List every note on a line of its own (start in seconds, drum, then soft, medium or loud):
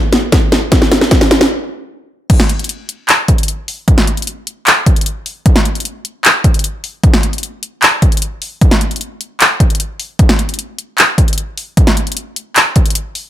0.13 snare medium
0.13 closed hi-hat medium
0.32 kick loud
0.32 snare medium
0.32 closed hi-hat medium
0.52 snare medium
0.52 closed hi-hat medium
0.72 kick medium
0.72 snare medium
0.72 closed hi-hat medium
0.82 snare medium
0.92 snare medium
0.92 closed hi-hat medium
1.01 snare medium
1.11 kick loud
1.11 snare medium
1.11 closed hi-hat medium
1.21 snare medium
1.31 snare loud
1.31 closed hi-hat medium
1.41 snare medium
2.30 kick loud
2.30 closed hi-hat medium
2.30 crash loud
2.40 snare medium
2.49 closed hi-hat medium
2.59 closed hi-hat medium
2.64 closed hi-hat medium
2.69 closed hi-hat medium
2.89 closed hi-hat medium
3.09 clap loud
3.09 closed hi-hat medium
3.28 kick medium
3.28 closed hi-hat medium
3.38 closed hi-hat medium
3.43 closed hi-hat medium
3.48 closed hi-hat medium
3.68 open hi-hat medium
3.88 kick loud
3.88 closed hi-hat medium
3.98 snare medium
4.07 closed hi-hat medium
4.17 closed hi-hat medium
4.22 closed hi-hat medium
4.27 closed hi-hat medium
4.47 closed hi-hat medium
4.67 clap loud
4.67 closed hi-hat medium
4.86 kick medium
4.86 closed hi-hat medium
4.96 closed hi-hat medium
5.01 closed hi-hat medium
5.06 closed hi-hat medium
5.26 open hi-hat medium
5.46 kick loud
5.46 closed hi-hat medium
5.56 snare medium
5.65 closed hi-hat medium
5.75 closed hi-hat soft
5.80 closed hi-hat medium
5.85 closed hi-hat medium
6.05 closed hi-hat medium
6.25 clap loud
6.25 closed hi-hat medium
6.44 kick medium
6.44 closed hi-hat medium
6.54 closed hi-hat soft
6.59 closed hi-hat medium
6.64 closed hi-hat medium
6.84 open hi-hat medium
7.04 kick loud
7.04 closed hi-hat medium
7.14 snare medium
7.23 closed hi-hat medium
7.33 closed hi-hat soft
7.38 closed hi-hat medium
7.43 closed hi-hat medium
7.63 closed hi-hat medium
7.82 clap loud
7.82 closed hi-hat medium
8.02 kick medium
8.02 closed hi-hat medium
8.12 closed hi-hat medium
8.17 closed hi-hat medium
8.22 closed hi-hat medium
8.42 open hi-hat medium
8.61 kick loud
8.61 closed hi-hat medium
8.71 snare medium
8.81 closed hi-hat medium
8.91 closed hi-hat soft
8.96 closed hi-hat medium
9.01 closed hi-hat medium
9.21 closed hi-hat medium
9.40 clap loud
9.40 closed hi-hat medium
9.60 kick medium
9.60 closed hi-hat medium
9.70 closed hi-hat soft
9.75 closed hi-hat medium
9.80 closed hi-hat medium
10.00 open hi-hat medium
10.19 kick loud
10.19 closed hi-hat medium
10.29 snare medium
10.39 closed hi-hat medium
10.49 closed hi-hat medium
10.54 closed hi-hat medium
10.59 closed hi-hat medium
10.79 closed hi-hat medium
10.98 clap loud
10.98 closed hi-hat medium
11.18 kick medium
11.18 closed hi-hat medium
11.28 closed hi-hat medium
11.33 closed hi-hat medium
11.38 closed hi-hat medium
11.58 open hi-hat medium
11.77 kick loud
11.77 closed hi-hat medium
11.87 snare medium
11.97 closed hi-hat medium
12.07 closed hi-hat medium
12.12 closed hi-hat medium
12.17 closed hi-hat medium
12.36 closed hi-hat medium
12.56 clap loud
12.56 closed hi-hat medium
12.76 kick medium
12.76 closed hi-hat medium
12.86 closed hi-hat medium
12.90 closed hi-hat medium
12.95 closed hi-hat medium
13.15 open hi-hat medium